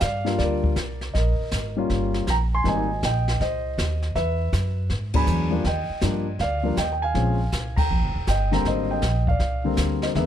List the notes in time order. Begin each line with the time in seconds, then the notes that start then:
0.00 G2 D5 F5, kick, snare, hi-hat pedal
0.25 G3 A#3 D4 F4, snare
0.38 D2 D5, brush sweep, kick, snare
0.43 A#4
0.64 kick
0.76 C2, kick, snare, hi-hat pedal
1.01 snare
1.14 A#1 A#4 D#5, brush sweep, kick, snare
1.39 muted upright bass stroke
1.51 G#1, kick, snare, hi-hat pedal
1.77 G3 A#3 C#4 F4
1.90 G1, brush sweep, kick, snare
2.14 snare
2.27 A#1 G5 A#5, kick, snare, hi-hat pedal
2.55 G#5 C6
2.64 G#1 G3 A#3 C4 D#4, brush sweep, kick, snare
2.68 D#5 G#5
3.03 A#1 D#5 G5, kick, snare, hi-hat pedal
3.28 snare
3.40 C2 C5 D#5, brush sweep, kick, snare
3.78 D#2, kick, snare, hi-hat pedal
4.02 snare
4.15 E2 B4 E5, brush sweep, kick, snare
4.53 F#2, kick, snare, hi-hat pedal
4.90 G#2, brush sweep, kick, snare
5.14 F#3 G#3 B3 D4 G#5 B5, kick, ride
5.26 E2, hi-hat pedal
5.50 F3 G3 A#3 D4
5.64 D#2 G5, brush sweep, kick, snare
5.68 D#5
5.89 muted upright bass stroke
6.01 G2 F3 G3 A#3 D4, kick, snare, hi-hat pedal
6.39 D2 F5, brush sweep, kick, snare
6.43 D5
6.63 F3 G3 A#3 D4
6.77 D#2 D#5 G5, kick, snare, hi-hat pedal
6.93 G5
7.02 F5 G#5
7.14 A#1 F3 G#3 C4 C#4, brush sweep, kick, snare
7.52 C2, kick, snare, hi-hat pedal
7.76 G5 A#5, kick, ride
7.91 A#1, brush sweep
8.02 G1
8.15 D#1
8.27 G1 D#5 G5, kick, snare, hi-hat pedal
8.51 D3 G3 A#3 C4 G5 A#5, snare
8.65 G#1 D#5, brush sweep, kick, snare
8.70 C5
8.91 D#5 G5
9.02 A#1, kick, snare, hi-hat pedal
9.27 D5 F5, kick
9.39 C2, brush sweep, kick, snare
9.64 D3 G3 A#3 C4
9.77 D2, kick, snare, hi-hat pedal
10.02 C5 D#5, snare
10.15 E2 D3 G#3 A#3 B3 B4 E5, brush sweep, kick, snare